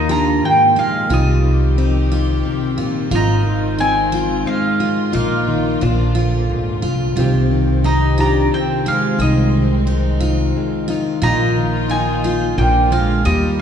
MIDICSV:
0, 0, Header, 1, 7, 480
1, 0, Start_track
1, 0, Tempo, 674916
1, 782, Time_signature, 3, 2, 24, 8
1, 9684, End_track
2, 0, Start_track
2, 0, Title_t, "Mandolin"
2, 0, Program_c, 0, 25
2, 80, Note_on_c, 0, 82, 100
2, 318, Note_off_c, 0, 82, 0
2, 322, Note_on_c, 0, 79, 99
2, 558, Note_off_c, 0, 79, 0
2, 561, Note_on_c, 0, 77, 89
2, 799, Note_off_c, 0, 77, 0
2, 807, Note_on_c, 0, 75, 84
2, 1246, Note_off_c, 0, 75, 0
2, 2244, Note_on_c, 0, 82, 102
2, 2702, Note_off_c, 0, 82, 0
2, 2705, Note_on_c, 0, 80, 103
2, 3177, Note_off_c, 0, 80, 0
2, 3180, Note_on_c, 0, 77, 93
2, 3651, Note_off_c, 0, 77, 0
2, 3660, Note_on_c, 0, 77, 73
2, 4113, Note_off_c, 0, 77, 0
2, 5587, Note_on_c, 0, 82, 100
2, 5825, Note_off_c, 0, 82, 0
2, 5834, Note_on_c, 0, 82, 93
2, 6071, Note_off_c, 0, 82, 0
2, 6074, Note_on_c, 0, 79, 94
2, 6313, Note_off_c, 0, 79, 0
2, 6316, Note_on_c, 0, 77, 86
2, 6533, Note_off_c, 0, 77, 0
2, 6553, Note_on_c, 0, 75, 80
2, 6999, Note_off_c, 0, 75, 0
2, 7989, Note_on_c, 0, 82, 119
2, 8437, Note_off_c, 0, 82, 0
2, 8469, Note_on_c, 0, 80, 100
2, 8945, Note_off_c, 0, 80, 0
2, 8948, Note_on_c, 0, 79, 101
2, 9188, Note_off_c, 0, 79, 0
2, 9191, Note_on_c, 0, 77, 91
2, 9411, Note_off_c, 0, 77, 0
2, 9427, Note_on_c, 0, 75, 95
2, 9672, Note_off_c, 0, 75, 0
2, 9684, End_track
3, 0, Start_track
3, 0, Title_t, "Steel-string acoustic guitar"
3, 0, Program_c, 1, 25
3, 66, Note_on_c, 1, 65, 84
3, 535, Note_off_c, 1, 65, 0
3, 542, Note_on_c, 1, 65, 76
3, 775, Note_off_c, 1, 65, 0
3, 784, Note_on_c, 1, 65, 88
3, 1254, Note_off_c, 1, 65, 0
3, 1265, Note_on_c, 1, 63, 68
3, 1499, Note_off_c, 1, 63, 0
3, 1505, Note_on_c, 1, 65, 82
3, 1966, Note_off_c, 1, 65, 0
3, 1975, Note_on_c, 1, 65, 73
3, 2206, Note_off_c, 1, 65, 0
3, 2214, Note_on_c, 1, 65, 98
3, 2689, Note_off_c, 1, 65, 0
3, 2692, Note_on_c, 1, 63, 68
3, 2931, Note_on_c, 1, 65, 86
3, 2932, Note_off_c, 1, 63, 0
3, 3407, Note_off_c, 1, 65, 0
3, 3414, Note_on_c, 1, 65, 72
3, 3650, Note_on_c, 1, 63, 93
3, 3653, Note_off_c, 1, 65, 0
3, 4127, Note_off_c, 1, 63, 0
3, 4134, Note_on_c, 1, 62, 70
3, 4373, Note_off_c, 1, 62, 0
3, 4373, Note_on_c, 1, 65, 79
3, 4844, Note_off_c, 1, 65, 0
3, 4852, Note_on_c, 1, 65, 75
3, 5088, Note_off_c, 1, 65, 0
3, 5096, Note_on_c, 1, 65, 91
3, 5570, Note_off_c, 1, 65, 0
3, 5578, Note_on_c, 1, 63, 74
3, 5815, Note_off_c, 1, 63, 0
3, 5816, Note_on_c, 1, 65, 87
3, 6289, Note_off_c, 1, 65, 0
3, 6302, Note_on_c, 1, 65, 84
3, 6532, Note_off_c, 1, 65, 0
3, 6541, Note_on_c, 1, 65, 87
3, 7012, Note_off_c, 1, 65, 0
3, 7018, Note_on_c, 1, 63, 71
3, 7255, Note_off_c, 1, 63, 0
3, 7257, Note_on_c, 1, 65, 88
3, 7728, Note_off_c, 1, 65, 0
3, 7736, Note_on_c, 1, 65, 80
3, 7968, Note_off_c, 1, 65, 0
3, 7977, Note_on_c, 1, 65, 98
3, 8450, Note_off_c, 1, 65, 0
3, 8460, Note_on_c, 1, 63, 71
3, 8696, Note_off_c, 1, 63, 0
3, 8707, Note_on_c, 1, 65, 84
3, 9175, Note_off_c, 1, 65, 0
3, 9188, Note_on_c, 1, 65, 81
3, 9416, Note_off_c, 1, 65, 0
3, 9425, Note_on_c, 1, 65, 92
3, 9684, Note_off_c, 1, 65, 0
3, 9684, End_track
4, 0, Start_track
4, 0, Title_t, "Pedal steel guitar"
4, 0, Program_c, 2, 26
4, 83, Note_on_c, 2, 62, 71
4, 297, Note_off_c, 2, 62, 0
4, 334, Note_on_c, 2, 58, 80
4, 543, Note_off_c, 2, 58, 0
4, 562, Note_on_c, 2, 56, 72
4, 776, Note_off_c, 2, 56, 0
4, 803, Note_on_c, 2, 55, 64
4, 1244, Note_off_c, 2, 55, 0
4, 2240, Note_on_c, 2, 63, 88
4, 2683, Note_off_c, 2, 63, 0
4, 2714, Note_on_c, 2, 60, 84
4, 3159, Note_off_c, 2, 60, 0
4, 3182, Note_on_c, 2, 56, 64
4, 3634, Note_off_c, 2, 56, 0
4, 3661, Note_on_c, 2, 58, 67
4, 4113, Note_off_c, 2, 58, 0
4, 5585, Note_on_c, 2, 63, 92
4, 5807, Note_off_c, 2, 63, 0
4, 5839, Note_on_c, 2, 62, 74
4, 6054, Note_off_c, 2, 62, 0
4, 6066, Note_on_c, 2, 60, 74
4, 6287, Note_off_c, 2, 60, 0
4, 6308, Note_on_c, 2, 56, 70
4, 6529, Note_off_c, 2, 56, 0
4, 6555, Note_on_c, 2, 56, 72
4, 7000, Note_off_c, 2, 56, 0
4, 7997, Note_on_c, 2, 63, 96
4, 8441, Note_off_c, 2, 63, 0
4, 8480, Note_on_c, 2, 63, 85
4, 8923, Note_off_c, 2, 63, 0
4, 8956, Note_on_c, 2, 58, 71
4, 9173, Note_off_c, 2, 58, 0
4, 9194, Note_on_c, 2, 56, 68
4, 9412, Note_off_c, 2, 56, 0
4, 9432, Note_on_c, 2, 55, 70
4, 9651, Note_off_c, 2, 55, 0
4, 9684, End_track
5, 0, Start_track
5, 0, Title_t, "String section"
5, 0, Program_c, 3, 48
5, 0, Note_on_c, 3, 51, 70
5, 0, Note_on_c, 3, 53, 67
5, 0, Note_on_c, 3, 58, 69
5, 0, Note_on_c, 3, 65, 70
5, 767, Note_off_c, 3, 58, 0
5, 771, Note_off_c, 3, 65, 0
5, 792, Note_on_c, 3, 60, 69
5, 796, Note_on_c, 3, 67, 74
5, 2197, Note_off_c, 3, 53, 0
5, 2215, Note_off_c, 3, 67, 0
5, 2217, Note_on_c, 3, 56, 68
5, 2221, Note_on_c, 3, 65, 82
5, 3638, Note_off_c, 3, 60, 0
5, 3645, Note_off_c, 3, 56, 0
5, 3667, Note_on_c, 3, 58, 65
5, 3669, Note_on_c, 3, 53, 69
5, 4116, Note_off_c, 3, 51, 0
5, 4151, Note_on_c, 3, 50, 72
5, 5073, Note_off_c, 3, 65, 0
5, 5090, Note_off_c, 3, 58, 0
5, 5091, Note_off_c, 3, 53, 0
5, 5097, Note_off_c, 3, 50, 0
5, 5100, Note_on_c, 3, 60, 86
5, 5104, Note_on_c, 3, 51, 64
5, 5106, Note_on_c, 3, 48, 71
5, 5109, Note_on_c, 3, 67, 71
5, 6531, Note_off_c, 3, 67, 0
5, 6550, Note_on_c, 3, 56, 65
5, 7953, Note_off_c, 3, 60, 0
5, 7956, Note_off_c, 3, 48, 0
5, 7972, Note_off_c, 3, 56, 0
5, 7991, Note_on_c, 3, 58, 66
5, 7994, Note_on_c, 3, 65, 87
5, 8000, Note_on_c, 3, 53, 65
5, 8915, Note_off_c, 3, 51, 0
5, 8934, Note_off_c, 3, 65, 0
5, 8940, Note_on_c, 3, 60, 67
5, 8942, Note_off_c, 3, 53, 0
5, 8942, Note_on_c, 3, 50, 71
5, 8943, Note_on_c, 3, 65, 76
5, 9417, Note_off_c, 3, 60, 0
5, 9418, Note_off_c, 3, 50, 0
5, 9418, Note_off_c, 3, 65, 0
5, 9435, Note_on_c, 3, 63, 75
5, 9444, Note_on_c, 3, 67, 84
5, 9684, Note_off_c, 3, 58, 0
5, 9684, Note_off_c, 3, 63, 0
5, 9684, Note_off_c, 3, 67, 0
5, 9684, End_track
6, 0, Start_track
6, 0, Title_t, "Nylon-string guitar"
6, 0, Program_c, 4, 24
6, 0, Note_on_c, 4, 39, 73
6, 0, Note_on_c, 4, 51, 60
6, 0, Note_on_c, 4, 58, 63
6, 66, Note_on_c, 4, 67, 71
6, 294, Note_off_c, 4, 39, 0
6, 297, Note_on_c, 4, 44, 67
6, 540, Note_off_c, 4, 44, 0
6, 548, Note_on_c, 4, 46, 62
6, 755, Note_off_c, 4, 58, 0
6, 756, Note_off_c, 4, 67, 0
6, 778, Note_off_c, 4, 46, 0
6, 781, Note_on_c, 4, 48, 73
6, 786, Note_on_c, 4, 63, 70
6, 1015, Note_off_c, 4, 51, 0
6, 1022, Note_off_c, 4, 48, 0
6, 1023, Note_on_c, 4, 51, 61
6, 1267, Note_on_c, 4, 60, 61
6, 1503, Note_off_c, 4, 63, 0
6, 1505, Note_on_c, 4, 63, 73
6, 1745, Note_on_c, 4, 48, 67
6, 1977, Note_off_c, 4, 48, 0
6, 1980, Note_on_c, 4, 46, 57
6, 2196, Note_off_c, 4, 60, 0
6, 2212, Note_off_c, 4, 63, 0
6, 2212, Note_on_c, 4, 44, 80
6, 2215, Note_on_c, 4, 65, 71
6, 2221, Note_off_c, 4, 46, 0
6, 2451, Note_off_c, 4, 51, 0
6, 2460, Note_on_c, 4, 51, 61
6, 2707, Note_on_c, 4, 60, 68
6, 2945, Note_off_c, 4, 65, 0
6, 2948, Note_on_c, 4, 65, 75
6, 3164, Note_off_c, 4, 60, 0
6, 3173, Note_on_c, 4, 60, 63
6, 3405, Note_off_c, 4, 65, 0
6, 3413, Note_on_c, 4, 65, 71
6, 3628, Note_off_c, 4, 44, 0
6, 3629, Note_off_c, 4, 60, 0
6, 3629, Note_off_c, 4, 65, 0
6, 3644, Note_on_c, 4, 46, 76
6, 3647, Note_on_c, 4, 65, 64
6, 3887, Note_off_c, 4, 51, 0
6, 3893, Note_off_c, 4, 46, 0
6, 3895, Note_on_c, 4, 51, 69
6, 4105, Note_off_c, 4, 65, 0
6, 4136, Note_on_c, 4, 46, 75
6, 4139, Note_off_c, 4, 51, 0
6, 4145, Note_on_c, 4, 65, 69
6, 4380, Note_on_c, 4, 53, 69
6, 4617, Note_on_c, 4, 44, 63
6, 4859, Note_off_c, 4, 46, 0
6, 4860, Note_off_c, 4, 44, 0
6, 4867, Note_on_c, 4, 46, 57
6, 5072, Note_off_c, 4, 53, 0
6, 5075, Note_off_c, 4, 65, 0
6, 5101, Note_off_c, 4, 46, 0
6, 5103, Note_on_c, 4, 48, 73
6, 5106, Note_on_c, 4, 51, 59
6, 5112, Note_on_c, 4, 60, 61
6, 5124, Note_on_c, 4, 67, 73
6, 5335, Note_off_c, 4, 51, 0
6, 5343, Note_off_c, 4, 48, 0
6, 5344, Note_on_c, 4, 51, 65
6, 5587, Note_off_c, 4, 60, 0
6, 5590, Note_on_c, 4, 60, 61
6, 5832, Note_off_c, 4, 67, 0
6, 5840, Note_on_c, 4, 67, 73
6, 6066, Note_off_c, 4, 60, 0
6, 6076, Note_on_c, 4, 60, 58
6, 6311, Note_off_c, 4, 67, 0
6, 6320, Note_on_c, 4, 67, 69
6, 6521, Note_off_c, 4, 60, 0
6, 6522, Note_off_c, 4, 67, 0
6, 6556, Note_on_c, 4, 48, 73
6, 6566, Note_on_c, 4, 63, 70
6, 6783, Note_off_c, 4, 51, 0
6, 6789, Note_off_c, 4, 48, 0
6, 6806, Note_on_c, 4, 51, 66
6, 7052, Note_on_c, 4, 56, 57
6, 7266, Note_off_c, 4, 63, 0
6, 7275, Note_on_c, 4, 63, 75
6, 7507, Note_off_c, 4, 56, 0
6, 7515, Note_on_c, 4, 56, 63
6, 7744, Note_off_c, 4, 63, 0
6, 7752, Note_on_c, 4, 63, 68
6, 7987, Note_off_c, 4, 63, 0
6, 7989, Note_off_c, 4, 56, 0
6, 7990, Note_on_c, 4, 46, 80
6, 7995, Note_on_c, 4, 65, 70
6, 8215, Note_off_c, 4, 51, 0
6, 8223, Note_on_c, 4, 51, 67
6, 8226, Note_off_c, 4, 46, 0
6, 8479, Note_on_c, 4, 58, 62
6, 8707, Note_off_c, 4, 65, 0
6, 8715, Note_on_c, 4, 65, 75
6, 8920, Note_off_c, 4, 65, 0
6, 8943, Note_off_c, 4, 51, 0
6, 8945, Note_on_c, 4, 46, 73
6, 8954, Note_off_c, 4, 58, 0
6, 8955, Note_on_c, 4, 53, 66
6, 8957, Note_on_c, 4, 60, 58
6, 8963, Note_on_c, 4, 62, 59
6, 8967, Note_on_c, 4, 65, 72
6, 9171, Note_off_c, 4, 53, 0
6, 9180, Note_on_c, 4, 53, 66
6, 9393, Note_off_c, 4, 53, 0
6, 9401, Note_off_c, 4, 60, 0
6, 9404, Note_off_c, 4, 62, 0
6, 9406, Note_off_c, 4, 65, 0
6, 9424, Note_off_c, 4, 46, 0
6, 9431, Note_on_c, 4, 39, 80
6, 9437, Note_on_c, 4, 67, 76
6, 9684, Note_off_c, 4, 39, 0
6, 9684, Note_off_c, 4, 67, 0
6, 9684, End_track
7, 0, Start_track
7, 0, Title_t, "Upright bass"
7, 0, Program_c, 5, 32
7, 0, Note_on_c, 5, 39, 96
7, 274, Note_off_c, 5, 39, 0
7, 778, Note_on_c, 5, 36, 93
7, 1712, Note_off_c, 5, 36, 0
7, 2212, Note_on_c, 5, 32, 101
7, 3149, Note_off_c, 5, 32, 0
7, 3656, Note_on_c, 5, 34, 97
7, 4115, Note_off_c, 5, 34, 0
7, 4137, Note_on_c, 5, 34, 111
7, 4595, Note_off_c, 5, 34, 0
7, 4620, Note_on_c, 5, 38, 73
7, 4837, Note_off_c, 5, 38, 0
7, 4851, Note_on_c, 5, 36, 73
7, 5072, Note_off_c, 5, 36, 0
7, 5090, Note_on_c, 5, 36, 96
7, 6027, Note_off_c, 5, 36, 0
7, 6532, Note_on_c, 5, 36, 98
7, 7469, Note_off_c, 5, 36, 0
7, 7978, Note_on_c, 5, 34, 106
7, 8912, Note_off_c, 5, 34, 0
7, 8945, Note_on_c, 5, 34, 99
7, 9400, Note_off_c, 5, 34, 0
7, 9426, Note_on_c, 5, 39, 106
7, 9684, Note_off_c, 5, 39, 0
7, 9684, End_track
0, 0, End_of_file